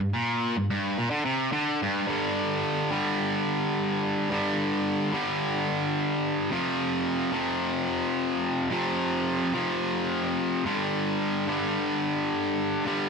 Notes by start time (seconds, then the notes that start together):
0.00 G2
0.13 A#2
0.57 G2
0.70 G2
0.98 A#2
1.10 D3
1.25 C3
1.52 D3
1.82 G2
2.08 G2 D3 G3
2.91 G2 D3 G3
4.30 G2 D3 G3
5.12 G2 D3 G3
6.51 F2 C3 F3
7.32 F2 C3 F3
8.70 F2 C3 F3
9.54 F2 C3 F3
10.65 G2 D3 G3
11.46 G2 D3 G3
12.85 G2 D3 G3